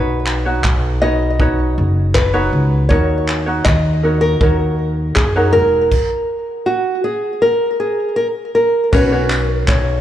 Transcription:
Already playing: B1 D#4 F#4 B4 C#5
0.26 clap
0.45 D#4 F#4 C#5
0.64 B1, kick, clap
1.01 D#4 F#4 B4 C#5 D#5
1.39 D#4 F#4 B4 C#5, kick
1.78 F#1
2.14 B4, kick, clap
2.34 D#4 F#4 B4 C#5
2.53 C#2
2.89 D#2 D#4 F#4 A#4 C#5, kick
3.28 clap
3.46 D#4 F#4 C#5
3.65 D#2 D#5, kick, clap
4.03 D#4 F#4 A#4 C#5
4.21 A#4
4.41 D#2 D#4 F#4 A#4 C#5, kick
5.15 F#2 G#4, kick, clap
5.36 D#4 F#4 A#4 C#5
5.53 E1 A#4
5.91 kick, crash
6.66 F#4
7.04 G#4
7.42 A#4
7.80 G#4
8.16 A#4
8.55 A#4
8.91 B1 B3 C#4 F#4 B4 C#5, kick, crash
9.12 C#4 F#4 C#5
9.30 clap, tambourine
9.43 A#4
9.68 B1 C#5, kick, clap

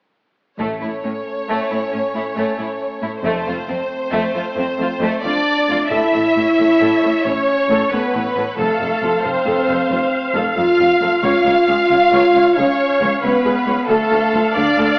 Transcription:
0.59 A1 A2 A3 C#4 C#5, taiko
0.81 A2 A3 E4
1.03 A2 A3 C#4
1.47 A2 A3
1.69 A2 A3 E4
1.91 A2 A3 C#4
2.14 A2 A3 E4
2.35 A2 A3
2.58 A2 A3 E4
3.02 A2 A3 E4
3.23 F1 F2 A3 C4 C5
3.45 F2 A3 F4
3.67 F2 A3 C4
4.11 F2 A3
4.34 F2 A3 F4
4.55 F2 A3 C4
4.78 F2 A3 F4
5.00 F2 A3
5.23 F2 A3 D4 F4 D5
5.68 F2 A3 F4
5.90 A1 A2 E4 A4 C#5 E5, taiko
6.13 A1 A2 A4
6.36 A1 A2 E4
6.58 A1 A2 A4
6.81 A1 A2 A4
7.03 A1 A2 A4
7.25 A1 A2 C#4 E4 C#5
7.69 A1 A2 A4
7.91 A1 A2 B3 A4 B4
8.14 A1 A2 E4
8.36 A1 A2 A4
8.58 F1 F2 A3 A4 F5
8.80 F1 F2 A4
9.02 F1 F2 F4
9.24 F1 F2 C4 A4 C5
9.46 F1 F2 A4
9.68 F1 F2 A4
9.90 F1 F2 F4
10.34 F1 F2 A4
10.56 F1 F2 F4 A4 F5
10.78 F1 F2 F4
11.01 F1 F2 A4
11.23 C#2 F4 C#5 F5, taiko
11.45 C#2 C#5
11.68 C#2 G#4
11.90 C#2 C#5
12.12 C#2 C#5
12.35 C#2 C#5
12.57 C#2 C#4 G#4 C#5
13.01 C#2 C#5
13.23 C#2 B3 B4 C#5
13.45 C#2 G#4
13.66 C#2 C#5
13.88 D2 A3 A4 F5
14.11 D2 A4
14.34 D2 F4
14.56 D2 D4 A4 D5
14.78 D2 A4

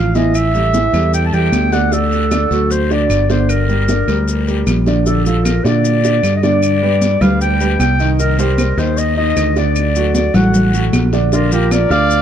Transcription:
Already playing: A1 F5
0.15 E3 E4 D#5 E5, high conga, short guiro, maracas
0.35 E5, high conga, long guiro, claves, maracas
0.54 G3 G4 A4, high conga, maracas
0.74 E3 E4 E5, high conga, short guiro, maracas
0.93 E2 G3 G4 A4, high conga, short guiro, claves, maracas
1.13 G5, high conga, long guiro, maracas
1.26 A5
1.33 E2 G3 G4 A4 G5, high conga, maracas
1.52 D2, high conga, short guiro, claves, maracas
1.72 D3 D4 D5 F#5, high conga, short guiro, maracas
1.92 D3 D4 A4 D5, high conga, long guiro, maracas
2.12 high conga, maracas
2.31 D3 D4 D5, high conga, short guiro, claves, maracas
2.51 D2 F#3 F#4 A4, high conga, short guiro, maracas
2.70 C5, high conga, long guiro, maracas
2.90 D3 D4 D5, high conga, maracas
3.10 G1, high conga, short guiro, claves, maracas
3.30 D3 D4 C5 D5, high conga, short guiro, maracas
3.49 A#4, high conga, long guiro, claves, maracas
3.69 G3 G4 A#4, high conga, maracas
3.88 D3 D4 D5, high conga, short guiro, maracas
4.08 D2 G3 G4 A#4, high conga, short guiro, claves, maracas
4.28 high conga, long guiro, maracas
4.47 G3 G4 A#4, high conga, maracas
4.67 A#1, high conga, short guiro, claves, maracas
4.86 D3 D4 D5, high conga, short guiro, maracas
5.06 D3 D4 A4 D5, high conga, long guiro, maracas
5.25 F3 F4 A4, high conga, maracas
5.44 A#4, high conga, short guiro, claves, maracas
5.65 A#2 D3 D4 D5, short guiro, maracas
5.84 high conga, long guiro, maracas
6.04 D3 D4 D5, high conga, maracas
6.23 G2, high conga, short guiro, claves, maracas
6.36 D#5
6.43 D3 D4 D5, high conga, short guiro, maracas
6.63 long guiro, claves, maracas
6.82 G3 G4 B4, high conga
7.01 high conga, short guiro, maracas
7.21 D2 G3 G4 B4 F5, high conga, low conga, short guiro, claves, maracas
7.41 G5, high conga, long guiro, maracas
7.60 G3 G4 B4, high conga, maracas
7.79 C2 G5, high conga, short guiro, claves, maracas
8.00 D#3 D#4 D#5, short guiro, maracas
8.19 D#3 D#4 A#4 D#5, high conga, long guiro, maracas
8.38 G3 G4 A#4 C5, high conga, maracas
8.58 high conga, short guiro, claves, maracas
8.78 D#2 D#3 D#4 C5 D#5, short guiro, maracas
8.97 D#5, high conga, long guiro, maracas
9.17 D#3 D#4 D#5, high conga
9.37 D2, high conga, short guiro, claves, maracas
9.56 D3 D4 D5, short guiro, maracas
9.75 high conga, long guiro, claves, maracas
9.95 F#3 F#4 A4, high conga, maracas
10.15 D5, high conga, short guiro, maracas
10.34 A1 F#3 F#4 A4 F#5, high conga, low conga, short guiro, claves, maracas
10.54 high conga, low conga, long guiro, maracas
10.74 F#3 F#4 A4, maracas
10.93 A#1, high conga, short guiro, claves, maracas
11.13 D3 D4 D5, short guiro, maracas
11.32 D3 D4 F4 A#4 D5, high conga, long guiro, maracas
11.52 F3 F4 G4 A#4, high conga, maracas
11.71 A#4 D5, high conga, short guiro, claves, maracas
11.90 D2 D3 D4 D5 F5, short guiro, maracas
12.10 high conga, long guiro, maracas

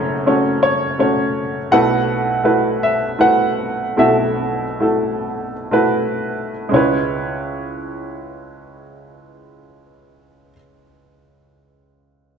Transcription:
Already playing: F#1 F#2 A3 C#4 F#4 A4 B4 C#5 D#5
0.26 A3 C#4 F#4 C#5
0.63 C#5
0.99 A3 C#4 F#4 C#5
1.72 B1 B2 A3 E4 F#4 A4 B4 F#5
2.43 A3 E4 F#4 B4
2.83 E5
3.19 A3 E4 F#4 B4 F#5
3.97 B1 B2 A3 E4 F#4 A4 E5
4.80 A3 E4 F#4 A4
5.71 A3 E4 F#4 B4
6.69 C#2 G#3 C#4
6.74 E4 B4 C#5

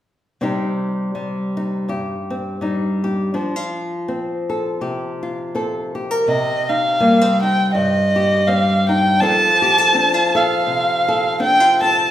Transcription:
0.41 C3 G3 C4 D#4 G4
1.15 G3
1.57 D#4
1.88 G2 G4
2.30 C4
2.61 G3 D#4
3.04 G4
3.34 F3 D4
3.56 F4
4.08 C4
4.50 A4
4.81 C3 G4
5.23 F4
5.55 C4 A4
5.95 G4
6.11 A#4
6.28 C3 D#5
6.69 D#4 F5
7.00 G3 A#3
7.21 C4
7.42 D#4 G5
7.74 G2 D#5
8.16 G4
8.47 G3 C4 F5
8.89 D#4 G5
9.20 F3 C4 F4 A4 A5
9.62 G4
9.78 A4
9.94 C4 D4
10.14 F4
10.35 A4 F5
10.67 C3
11.08 A4
11.40 C4 D4 G5
11.60 F4
11.82 A4 A5

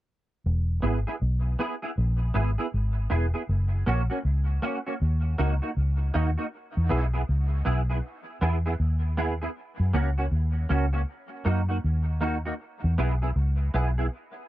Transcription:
0.46 E1
0.82 G#1 B3 E4 G#4
1.07 B3 E4 G#4
1.22 B1
1.59 B3 E4 G#4
1.82 B3 E4 G#4
1.98 A#1
2.34 G#1 B3 E4 G#4
2.58 B3 E4 G#4
2.74 G#1
3.10 E1 B3 E4 G#4
3.34 B3 E4 G#4
3.49 F#1
3.86 A#1 A#3 C#4 F#4
4.10 A#3 C#4 F#4
4.25 C#2
4.62 A#3 C#4 F#4
4.87 A#3 C#4 F#4
5.02 D#2
5.38 C#2 A#3 D#4 F#4
5.62 A#3 D#4 F#4
5.77 C#2
6.14 D#2 A#3 D#4 F#4
6.38 A#3 D#4 F#4
6.77 E2
6.89 B1 B3 E4 G#4
7.13 B3 E4 G#4
7.29 C#2
7.65 B1 B3 E4 G#4
7.90 B3 E4 G#4
8.41 E2 B3 E4 G#4
8.66 B3 E4 G#4
8.80 D#2
9.17 B3 E4 G#4
9.42 B3 E4 G#4
9.80 F#2
9.93 C#2 A#3 C#4 F#4
10.18 A#3 C#4 F#4
10.32 D#2
10.69 C#2 A#3 C#4 F#4
10.93 A#3 C#4 F#4
11.45 F#2 A#3 D#4 F#4
11.69 A#3 D#4 F#4
11.84 D#2
12.21 A#3 D#4 F#4
12.45 A#3 D#4 F#4
12.84 E2
12.98 B1 B3 E4 G#4
13.22 B3 E4 G#4
13.36 C#2
13.74 B1 B3 E4 G#4
13.98 B3 E4 G#4

